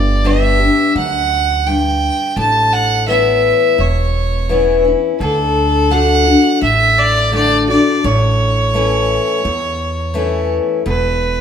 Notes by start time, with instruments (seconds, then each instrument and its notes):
Already playing: upright bass G1, steel-string acoustic guitar G2, fiddle D5
0.24 steel-string acoustic guitar G3 B3 D4 G4, fiddle E5
0.59 steel-string acoustic guitar D4 G4
0.96 upright bass D2, steel-string acoustic guitar F#2, fiddle F#5
1.67 steel-string acoustic guitar G2, fiddle G5
2.37 upright bass A1, steel-string acoustic guitar A2, fiddle A5
2.73 fiddle F#5
3.08 steel-string acoustic guitar E3 B3 C#4 E4, fiddle E5
3.78 upright bass E1, steel-string acoustic guitar E2, fiddle C#5
4.49 steel-string acoustic guitar E3 B3 C#4 E4
4.85 steel-string acoustic guitar C#4 E4
5.19 upright bass D2, steel-string acoustic guitar D3, fiddle A4
5.90 steel-string acoustic guitar D3 A3 D4 F#4, fiddle F#5
6.25 steel-string acoustic guitar D4 F#4
6.61 upright bass A1, steel-string acoustic guitar A2, fiddle E5
6.98 fiddle D5
7.32 steel-string acoustic guitar D3 A3 D4 F#4, fiddle D5
7.68 steel-string acoustic guitar D4 F#4, fiddle D5
8.04 upright bass A1, steel-string acoustic guitar A2, fiddle C#5
8.74 steel-string acoustic guitar E3 A3 C#4 E4
9.45 upright bass E2, steel-string acoustic guitar E2
10.14 steel-string acoustic guitar E3 A3 C#4 E4
10.86 upright bass E1, steel-string acoustic guitar E2, fiddle B4